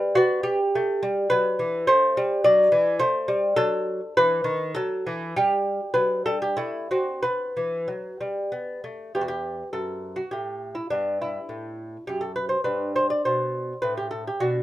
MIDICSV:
0, 0, Header, 1, 2, 480
1, 0, Start_track
1, 0, Key_signature, 1, "minor"
1, 0, Tempo, 570885
1, 139, Time_signature, 3, 2, 24, 8
1, 3017, Tempo, 584795
1, 4457, Tempo, 608519
1, 5417, Tempo, 667408
1, 6377, Tempo, 628931
1, 7337, Tempo, 583658
1, 11840, End_track
2, 0, Start_track
2, 0, Title_t, "Lute"
2, 0, Program_c, 0, 24
2, 0, Note_on_c, 0, 55, 66
2, 0, Note_on_c, 0, 71, 96
2, 129, Note_on_c, 0, 66, 100
2, 130, Note_off_c, 0, 55, 0
2, 130, Note_off_c, 0, 71, 0
2, 143, Note_on_c, 0, 59, 75
2, 361, Note_off_c, 0, 66, 0
2, 365, Note_on_c, 0, 67, 87
2, 490, Note_off_c, 0, 59, 0
2, 634, Note_on_c, 0, 57, 75
2, 856, Note_off_c, 0, 57, 0
2, 863, Note_on_c, 0, 55, 78
2, 1064, Note_off_c, 0, 67, 0
2, 1090, Note_off_c, 0, 55, 0
2, 1091, Note_on_c, 0, 71, 101
2, 1104, Note_on_c, 0, 54, 76
2, 1330, Note_off_c, 0, 54, 0
2, 1339, Note_on_c, 0, 52, 69
2, 1557, Note_off_c, 0, 71, 0
2, 1568, Note_off_c, 0, 52, 0
2, 1575, Note_on_c, 0, 72, 119
2, 1584, Note_on_c, 0, 57, 80
2, 1811, Note_off_c, 0, 57, 0
2, 1826, Note_on_c, 0, 55, 82
2, 2038, Note_off_c, 0, 72, 0
2, 2051, Note_off_c, 0, 55, 0
2, 2055, Note_on_c, 0, 74, 109
2, 2063, Note_on_c, 0, 54, 79
2, 2283, Note_off_c, 0, 54, 0
2, 2286, Note_on_c, 0, 52, 82
2, 2514, Note_off_c, 0, 74, 0
2, 2518, Note_on_c, 0, 72, 113
2, 2519, Note_off_c, 0, 52, 0
2, 2524, Note_on_c, 0, 57, 79
2, 2758, Note_off_c, 0, 57, 0
2, 2759, Note_on_c, 0, 55, 77
2, 2988, Note_off_c, 0, 72, 0
2, 2996, Note_on_c, 0, 69, 112
2, 2997, Note_off_c, 0, 55, 0
2, 3003, Note_on_c, 0, 54, 83
2, 3354, Note_off_c, 0, 54, 0
2, 3467, Note_off_c, 0, 69, 0
2, 3495, Note_on_c, 0, 71, 111
2, 3503, Note_on_c, 0, 52, 77
2, 3715, Note_off_c, 0, 52, 0
2, 3718, Note_on_c, 0, 51, 81
2, 3957, Note_off_c, 0, 51, 0
2, 3959, Note_off_c, 0, 71, 0
2, 3967, Note_on_c, 0, 69, 105
2, 3978, Note_on_c, 0, 54, 80
2, 4207, Note_off_c, 0, 54, 0
2, 4229, Note_on_c, 0, 52, 70
2, 4433, Note_off_c, 0, 69, 0
2, 4452, Note_off_c, 0, 52, 0
2, 4474, Note_on_c, 0, 67, 96
2, 4482, Note_on_c, 0, 55, 79
2, 4812, Note_off_c, 0, 55, 0
2, 4918, Note_off_c, 0, 67, 0
2, 4926, Note_on_c, 0, 71, 90
2, 4932, Note_on_c, 0, 54, 67
2, 5160, Note_off_c, 0, 71, 0
2, 5161, Note_off_c, 0, 54, 0
2, 5178, Note_on_c, 0, 69, 90
2, 5186, Note_on_c, 0, 55, 65
2, 5297, Note_off_c, 0, 69, 0
2, 5305, Note_on_c, 0, 67, 78
2, 5414, Note_off_c, 0, 55, 0
2, 5422, Note_on_c, 0, 64, 85
2, 5423, Note_off_c, 0, 67, 0
2, 5429, Note_on_c, 0, 57, 65
2, 5649, Note_off_c, 0, 64, 0
2, 5650, Note_off_c, 0, 57, 0
2, 5668, Note_on_c, 0, 66, 66
2, 5672, Note_on_c, 0, 60, 61
2, 5896, Note_on_c, 0, 71, 86
2, 5900, Note_off_c, 0, 60, 0
2, 5901, Note_off_c, 0, 66, 0
2, 5905, Note_on_c, 0, 59, 63
2, 6134, Note_off_c, 0, 59, 0
2, 6141, Note_on_c, 0, 52, 64
2, 6364, Note_off_c, 0, 52, 0
2, 6364, Note_on_c, 0, 54, 57
2, 6602, Note_off_c, 0, 54, 0
2, 6615, Note_on_c, 0, 55, 59
2, 6849, Note_off_c, 0, 55, 0
2, 6853, Note_on_c, 0, 59, 58
2, 7071, Note_off_c, 0, 71, 0
2, 7088, Note_off_c, 0, 59, 0
2, 7098, Note_on_c, 0, 57, 55
2, 7322, Note_off_c, 0, 57, 0
2, 7334, Note_on_c, 0, 67, 66
2, 7337, Note_on_c, 0, 40, 48
2, 7342, Note_on_c, 0, 59, 33
2, 7386, Note_on_c, 0, 66, 58
2, 7393, Note_off_c, 0, 67, 0
2, 7444, Note_on_c, 0, 67, 69
2, 7448, Note_off_c, 0, 66, 0
2, 7724, Note_off_c, 0, 40, 0
2, 7803, Note_off_c, 0, 67, 0
2, 7811, Note_on_c, 0, 69, 67
2, 7814, Note_on_c, 0, 42, 48
2, 8162, Note_off_c, 0, 69, 0
2, 8166, Note_on_c, 0, 66, 61
2, 8201, Note_off_c, 0, 42, 0
2, 8290, Note_on_c, 0, 67, 64
2, 8294, Note_off_c, 0, 66, 0
2, 8304, Note_on_c, 0, 45, 51
2, 8644, Note_off_c, 0, 67, 0
2, 8650, Note_on_c, 0, 64, 54
2, 8691, Note_off_c, 0, 45, 0
2, 8756, Note_off_c, 0, 59, 0
2, 8775, Note_off_c, 0, 64, 0
2, 8778, Note_on_c, 0, 59, 34
2, 8778, Note_on_c, 0, 62, 68
2, 8787, Note_on_c, 0, 43, 53
2, 9014, Note_off_c, 0, 62, 0
2, 9034, Note_on_c, 0, 64, 61
2, 9171, Note_off_c, 0, 43, 0
2, 9260, Note_on_c, 0, 45, 45
2, 9648, Note_off_c, 0, 45, 0
2, 9722, Note_off_c, 0, 64, 0
2, 9739, Note_on_c, 0, 67, 67
2, 9752, Note_on_c, 0, 42, 46
2, 9850, Note_on_c, 0, 69, 59
2, 9864, Note_off_c, 0, 67, 0
2, 9969, Note_off_c, 0, 69, 0
2, 9973, Note_on_c, 0, 71, 72
2, 10078, Note_off_c, 0, 71, 0
2, 10082, Note_on_c, 0, 72, 61
2, 10133, Note_off_c, 0, 42, 0
2, 10190, Note_off_c, 0, 59, 0
2, 10204, Note_off_c, 0, 72, 0
2, 10207, Note_on_c, 0, 62, 35
2, 10207, Note_on_c, 0, 71, 75
2, 10214, Note_on_c, 0, 43, 49
2, 10447, Note_off_c, 0, 71, 0
2, 10465, Note_on_c, 0, 72, 79
2, 10581, Note_off_c, 0, 72, 0
2, 10585, Note_on_c, 0, 74, 67
2, 10605, Note_off_c, 0, 43, 0
2, 10706, Note_off_c, 0, 74, 0
2, 10709, Note_on_c, 0, 72, 68
2, 10715, Note_on_c, 0, 47, 48
2, 11095, Note_off_c, 0, 47, 0
2, 11168, Note_off_c, 0, 72, 0
2, 11174, Note_on_c, 0, 71, 81
2, 11185, Note_on_c, 0, 45, 53
2, 11299, Note_off_c, 0, 71, 0
2, 11302, Note_on_c, 0, 67, 66
2, 11409, Note_off_c, 0, 67, 0
2, 11412, Note_on_c, 0, 69, 70
2, 11536, Note_off_c, 0, 69, 0
2, 11549, Note_on_c, 0, 67, 69
2, 11564, Note_off_c, 0, 45, 0
2, 11618, Note_off_c, 0, 62, 0
2, 11655, Note_on_c, 0, 66, 75
2, 11660, Note_on_c, 0, 47, 55
2, 11663, Note_off_c, 0, 67, 0
2, 11663, Note_on_c, 0, 62, 37
2, 11840, Note_off_c, 0, 47, 0
2, 11840, Note_off_c, 0, 62, 0
2, 11840, Note_off_c, 0, 66, 0
2, 11840, End_track
0, 0, End_of_file